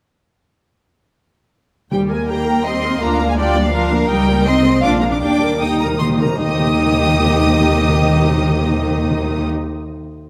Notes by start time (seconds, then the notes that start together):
1.91 D#2 D#3 G3 G4 G5
2.09 G#3 A#3 A#4 G#5
2.27 G3 A#3 G4 G5 A#5
2.47 A#3 A#4
2.64 G3 C4 G4 D#5 C6
2.84 A#3 A#4
3.01 D2 A#3 D4 F4 F5 A#5
3.21 A#3 D4
3.28 G#3 G#5
3.37 G3 D4 F4 D5 G5
3.56 A#3 D4
3.64 F3 F5
3.72 D4 F4 A#4
3.92 A#3 D4
4.09 C#2 G3 D#4 G5
4.28 A#3 C#4
4.45 C2 C4 D#4 D#5 C6
4.64 G#3 C4
4.82 A#1 A#3 D4 F4 F5 D6
5.00 G#3 A#3 D4 A#5
5.10 D4 D6
5.20 D#2 D#3 A#3 D4 G4 G5 D6
5.29 D#3
5.38 D#3 G3 A#4
5.46 D#3
5.54 D#3
5.60 D#3 A#3 D#4 G4 G5 D#6
5.69 D#3
5.78 D#3 G3 A#4 A#5
5.86 D#3
5.94 D#3
5.99 D#3 A#3 G4 C6
6.09 D#3
6.18 D#3 G3 A#4 A#5
6.26 D#3
6.39 D#2 D#3 A#3 D#4 G4 D#5 D#6
6.46 D#3
6.53 D#3
6.60 D#3
6.66 D#3
6.73 D#3
6.80 D#3
6.86 D#3
6.92 D#3
6.99 D#3
7.06 D#3
7.12 D#3
7.19 D#3
7.26 D#3
7.33 D#3
7.40 D#3
7.47 D#3
7.54 D#3
7.60 D#3
7.67 D#3
7.74 D#3
7.81 D#3
7.88 D#3
7.95 D#3
8.02 D#3
8.09 D#3
8.16 D#3
8.23 D#3
8.30 D#3
8.36 D#3
8.43 D#3
8.49 D#3
8.56 D#3
8.63 D#3
8.70 D#3
8.77 D#3
8.83 D#3
8.91 D#3
8.97 D#3
9.04 D#3
9.11 D#3
9.17 D#3
9.24 D#3
9.31 D#3
9.38 D#3